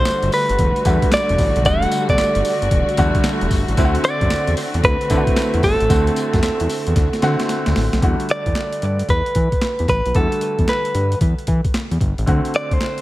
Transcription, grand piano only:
0.00 0.34 D3 medium
0.00 0.34 G3 medium
0.00 0.34 A3 medium
0.00 0.35 F#4 medium
0.85 1.48 D3 medium
0.85 1.49 G3 medium
0.85 1.49 A3 medium
0.85 1.49 F#4 medium
1.65 2.47 D3 medium
1.65 2.47 G3 medium
1.65 2.47 A3 medium
1.65 2.47 F#4 medium
2.98 3.61 D3 loud
2.98 3.61 G3 medium
2.98 3.61 A3 medium
2.98 3.62 F#4 loud
3.77 4.59 D3 loud
3.77 4.59 A3 medium
3.77 4.60 C4 medium
3.77 3.86 E4 medium
3.85 4.63 F#4 loud
5.10 5.73 D3 medium
5.10 5.73 A3 medium
5.10 5.73 C4 medium
5.10 5.19 E4 medium
5.17 5.77 F#4 medium
5.89 6.71 D3 medium
5.89 6.71 A3 medium
5.89 6.72 C4 medium
5.89 6.72 F#4 medium
7.22 7.85 D3 loud
7.22 7.86 A3 medium
7.22 7.86 C4 medium
7.22 7.86 F#4 loud
8.01 10.10 D3 medium
8.01 10.11 G3 medium
8.01 10.11 A3 medium
8.01 10.11 F#4 medium
10.14 12.23 D3 medium
10.14 12.23 G3 medium
10.14 12.23 A3 medium
10.14 12.24 F#4 medium
12.26 13.01 D3 medium
12.26 13.01 A3 medium
12.26 13.01 C4 medium
12.26 13.01 F#4 medium

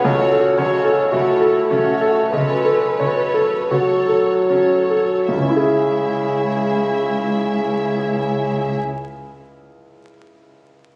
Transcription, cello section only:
0.05 0.13 C#3 soft
0.58 0.66 C#3 soft
1.13 1.21 C#3 soft
1.71 1.79 C#3 soft
2.33 2.41 C#3 soft
2.99 3.07 C#3 soft
3.70 3.78 C#3 soft
4.50 4.58 C#3 soft
5.29 8.78 C#2 soft

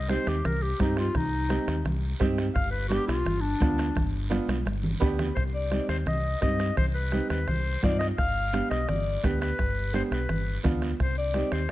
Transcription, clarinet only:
0.00 0.11 D#5 medium
0.09 0.29 C5 medium
0.28 0.47 G4 medium
0.45 0.64 A#4 medium
0.62 0.79 G4 medium
0.81 0.97 D#4 medium
0.98 1.18 F4 medium
1.16 1.84 D#4 loud
2.55 2.70 F5 loud
2.71 2.88 B4 medium
2.88 3.06 G4 loud
3.07 3.42 F4 medium
3.41 4.10 D4 loud
5.35 5.43 C5 medium
5.54 5.87 D5 medium
5.89 5.97 C5 medium
6.08 6.40 D#5 medium
6.42 6.75 D#5 medium
6.78 6.85 C5 medium
6.94 7.27 B4 medium
7.30 7.50 B4 medium
7.48 7.83 C5 medium
7.84 7.99 D5 medium
7.99 8.07 D#5 loud
8.18 8.67 F5 loud
8.70 8.90 D#5 medium
8.88 9.26 D5 medium
9.24 9.41 B4 medium
9.41 9.90 B4 medium
9.95 10.03 C5 medium
10.12 10.61 B4 medium
11.02 11.17 C5 medium
11.18 11.54 D5 medium
11.53 11.71 C5 medium

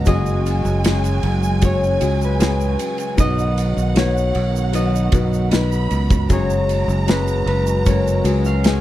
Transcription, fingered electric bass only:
0.07 0.61 F#1 loud
0.65 1.20 F#1 loud
1.23 1.97 F#1 medium
2.02 2.76 C#2 medium
3.18 3.73 B1 loud
3.77 4.31 B1 medium
4.36 5.09 B1 medium
5.12 5.87 B1 medium
5.91 6.28 C#2 medium
6.30 6.85 F#1 loud
6.88 7.43 F#1 loud
7.46 8.20 F#1 medium
8.24 8.81 C#2 medium

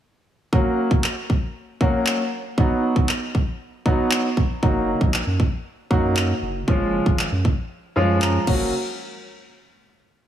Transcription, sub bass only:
4.63 4.94 F#1 medium
5.01 5.22 A#1 medium
5.27 5.48 F#2 medium
5.91 6.33 F#2 medium
6.42 6.63 F#1 loud
6.68 7.00 F#1 loud
7.06 7.27 G#1 medium
7.32 7.53 F#2 medium
7.96 8.38 F#2 medium
8.47 8.71 F#1 loud

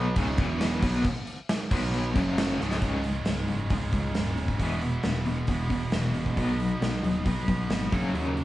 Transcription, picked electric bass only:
0.00 0.13 B1 loud
0.16 0.37 C#1 loud
0.38 0.79 E1 medium
0.82 1.03 B1 medium
1.71 2.12 B1 loud
2.16 2.57 F#1 medium
2.61 2.81 C#1 medium
2.82 3.19 C#1 medium
3.27 3.45 C#1 medium
3.49 3.67 F#1 medium
3.71 3.89 C#1 medium
3.93 4.11 C#2 medium
4.16 4.53 D#1 medium
4.60 4.97 E1 medium
5.04 5.41 E1 medium
5.48 5.86 E1 medium
5.92 6.30 E1 medium
6.37 6.75 B1 medium
6.81 7.00 B1 medium
7.03 7.22 D#1 medium
7.25 7.44 B1 medium
7.49 7.67 B1 medium
7.69 7.88 G#1 medium
7.93 8.11 F#1 medium
8.14 8.44 D#2 medium

